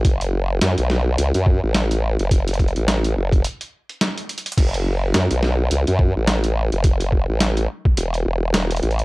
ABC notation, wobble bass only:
X:1
M:4/4
L:1/16
Q:"Swing 16ths" 1/4=106
K:F#m
V:1 name="Wobble bass" clef=bass
F,,,4 F,, B,,,3 C,, F,,2 A,,,4 F,,,- | F,,,3 A,,,3 F,,,2 z8 | F,,,4 F,, B,,,3 C,, F,,2 A,,,4 F,,,- | F,,,3 A,,,3 z2 E,,,2 E,,,4 A,,,2 |]